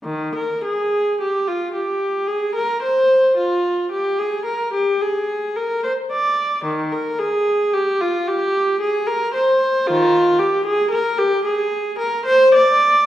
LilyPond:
\new Staff \with { instrumentName = "Viola" } { \time 3/4 \key aes \lydian \tempo 4 = 55 ees16 bes'16 aes'8 g'16 f'16 g'8 aes'16 bes'16 c''8 | f'8 g'16 aes'16 bes'16 g'16 aes'8 bes'16 c''16 d''8 | ees16 bes'16 aes'8 g'16 f'16 g'8 aes'16 bes'16 c''8 | <ees f'>8 g'16 aes'16 bes'16 g'16 aes'8 bes'16 c''16 d''8 | }